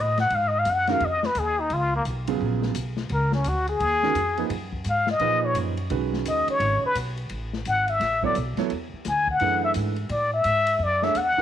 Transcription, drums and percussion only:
0.17 snare soft
0.17 ride soft
0.30 ride medium
0.65 hi-hat pedal medium
0.65 ride medium
0.87 snare soft
0.87 ride soft
1.00 ride medium
1.23 snare soft
1.35 hi-hat pedal medium
1.35 ride medium
1.70 ride medium
2.05 hi-hat pedal medium
2.05 ride medium
2.27 ride medium
2.62 snare soft
2.75 hi-hat pedal medium
2.75 ride medium
2.97 snare soft
3.09 ride medium
3.32 snare soft
3.44 hi-hat pedal medium
3.44 ride medium
3.67 ride soft
3.80 ride medium
4.03 snare soft
4.15 hi-hat pedal medium
4.15 ride medium
4.37 ride soft
4.50 ride medium
4.73 kick soft
4.84 hi-hat pedal soft
4.84 ride medium
5.07 snare soft
5.19 ride medium
5.55 hi-hat pedal soft
5.55 ride medium
5.77 ride soft
5.90 ride medium
6.13 snare soft
6.25 hi-hat pedal medium
6.25 ride medium
6.48 ride medium
6.60 ride medium
6.95 hi-hat pedal medium
6.95 ride medium
7.17 ride soft
7.29 ride medium
7.53 snare soft
7.65 hi-hat pedal soft
7.65 ride medium
7.88 ride soft
8.01 snare soft
8.01 ride medium
8.23 kick medium
8.35 hi-hat pedal medium
8.35 ride medium
8.57 snare soft
8.57 ride soft
8.70 ride medium
9.05 snare soft
9.05 hi-hat pedal medium
9.05 ride medium
9.27 kick medium
9.40 ride medium
9.74 hi-hat pedal medium
9.74 ride medium
9.96 ride soft
10.09 ride medium
10.44 hi-hat pedal soft
10.44 ride medium
10.67 ride medium
11.02 snare soft
11.15 hi-hat pedal medium
11.15 ride medium

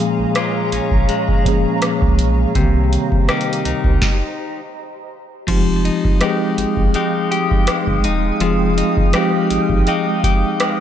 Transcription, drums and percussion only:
0.00 closed hi-hat medium
0.35 cross-stick loud
0.35 closed hi-hat medium
0.72 closed hi-hat medium
0.91 kick medium
1.09 closed hi-hat soft
1.28 kick medium
1.46 kick medium
1.46 closed hi-hat medium
1.82 cross-stick medium
1.82 closed hi-hat medium
2.02 kick medium
2.19 closed hi-hat medium
2.55 kick loud
2.55 closed hi-hat medium
2.93 closed hi-hat medium
3.12 kick medium
3.29 cross-stick loud
3.29 closed hi-hat soft
3.41 closed hi-hat medium
3.53 closed hi-hat medium
3.65 closed hi-hat medium
3.84 kick medium
4.02 kick loud
4.02 snare medium
5.48 kick loud
5.48 closed hi-hat medium
5.48 crash loud
5.85 closed hi-hat medium
6.05 kick loud
6.21 cross-stick loud
6.21 closed hi-hat medium
6.58 closed hi-hat medium
6.77 kick medium
6.94 closed hi-hat soft
7.32 closed hi-hat medium
7.51 kick medium
7.67 cross-stick loud
7.67 closed hi-hat medium
7.87 kick medium
8.04 closed hi-hat medium
8.40 closed hi-hat medium
8.78 closed hi-hat medium
8.97 kick loud
9.13 cross-stick loud
9.13 closed hi-hat medium
9.50 closed hi-hat medium
9.70 kick medium
9.87 closed hi-hat soft
10.24 kick loud
10.24 closed hi-hat medium
10.60 cross-stick loud
10.60 closed hi-hat medium

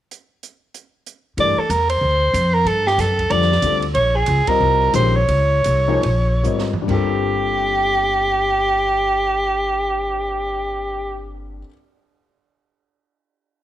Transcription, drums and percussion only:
0.11 closed hi-hat soft
0.43 closed hi-hat soft
0.74 closed hi-hat soft
1.06 closed hi-hat soft
1.38 ride medium
1.70 hi-hat pedal soft
1.70 ride medium
1.90 ride medium
2.34 hi-hat pedal medium
2.34 ride medium
2.67 ride soft
2.87 snare soft
2.99 snare soft
2.99 hi-hat pedal soft
2.99 ride medium
3.19 kick soft
3.19 ride soft
3.30 ride soft
3.42 snare soft
3.52 snare soft
3.62 hi-hat pedal medium
3.62 ride medium
3.82 ride soft
3.95 ride medium
4.26 hi-hat pedal soft
4.26 ride medium
4.47 kick medium
4.47 ride medium
4.93 hi-hat pedal medium
4.93 ride medium
5.28 ride medium
5.64 hi-hat pedal medium
5.64 ride medium
6.03 ride medium
6.44 hi-hat pedal soft
6.59 snare soft
6.73 floor tom medium
6.88 kick medium
6.88 crash medium
7.17 cymbal swell soft

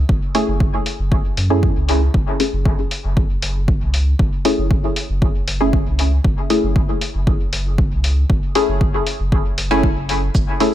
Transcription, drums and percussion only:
0.09 kick loud
0.35 open hi-hat medium
0.60 kick loud
0.86 open hi-hat medium
1.12 kick loud
1.37 open hi-hat medium
1.63 kick loud
1.89 open hi-hat medium
2.14 kick loud
2.40 open hi-hat medium
2.65 kick loud
2.91 open hi-hat medium
3.17 kick loud
3.42 open hi-hat medium
3.68 kick loud
3.94 open hi-hat medium
4.19 kick loud
4.45 open hi-hat medium
4.71 kick loud
4.96 open hi-hat medium
5.22 kick loud
5.48 open hi-hat medium
5.73 kick loud
5.99 open hi-hat medium
6.24 kick loud
6.50 open hi-hat medium
6.76 kick loud
7.01 open hi-hat medium
7.27 kick loud
7.53 open hi-hat medium
7.78 kick loud
8.04 open hi-hat medium
8.30 kick loud
8.55 open hi-hat medium
8.81 kick loud
9.07 open hi-hat medium
9.32 kick loud
9.58 open hi-hat medium
9.83 kick loud
10.09 open hi-hat medium
10.35 kick loud
10.35 cabasa soft
10.60 open hi-hat medium

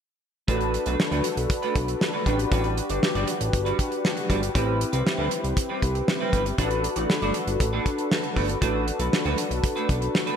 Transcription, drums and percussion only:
0.48 kick loud
0.48 closed hi-hat medium
0.61 closed hi-hat soft
0.74 closed hi-hat medium
0.86 closed hi-hat medium
1.00 snare loud
1.12 closed hi-hat soft
1.24 closed hi-hat medium
1.37 closed hi-hat medium
1.50 kick loud
1.50 closed hi-hat loud
1.63 closed hi-hat soft
1.76 kick loud
1.76 closed hi-hat medium
1.88 closed hi-hat soft
2.01 snare loud
2.26 kick medium
2.26 closed hi-hat medium
2.39 closed hi-hat medium
2.52 kick loud
2.52 closed hi-hat medium
2.64 closed hi-hat soft
2.77 closed hi-hat medium
2.89 closed hi-hat medium
3.03 snare loud
3.15 closed hi-hat soft
3.27 closed hi-hat medium
3.41 closed hi-hat medium
3.53 kick loud
3.53 closed hi-hat loud
3.66 closed hi-hat soft
3.79 kick medium
3.79 closed hi-hat medium
3.92 closed hi-hat soft
4.05 snare loud
4.17 closed hi-hat soft
4.30 kick medium
4.30 closed hi-hat medium
4.43 closed hi-hat medium
4.55 kick loud
4.55 closed hi-hat medium
4.81 closed hi-hat medium
4.93 closed hi-hat soft
5.07 snare loud
5.31 closed hi-hat medium
5.44 closed hi-hat medium
5.57 kick loud
5.57 closed hi-hat loud
5.82 kick medium
5.82 closed hi-hat medium
5.95 closed hi-hat soft
6.08 snare loud
6.33 kick medium
6.33 closed hi-hat medium
6.46 closed hi-hat medium
6.58 kick loud
6.58 closed hi-hat medium
6.71 closed hi-hat soft
6.84 closed hi-hat medium
6.96 closed hi-hat medium
7.10 snare loud
7.22 closed hi-hat soft
7.34 closed hi-hat medium
7.47 closed hi-hat medium
7.60 kick loud
7.60 closed hi-hat loud
7.86 kick loud
7.86 closed hi-hat medium
7.98 closed hi-hat soft
8.12 snare loud
8.24 closed hi-hat soft
8.36 kick medium
8.36 open hi-hat medium
8.49 closed hi-hat medium
8.62 kick loud
8.62 closed hi-hat medium
8.88 closed hi-hat medium
8.99 closed hi-hat medium
9.13 snare loud
9.26 closed hi-hat soft
9.38 closed hi-hat medium
9.51 closed hi-hat medium
9.64 kick loud
9.64 closed hi-hat loud
9.77 closed hi-hat soft
9.89 kick loud
9.89 closed hi-hat medium
10.02 closed hi-hat soft
10.15 snare loud
10.27 closed hi-hat soft

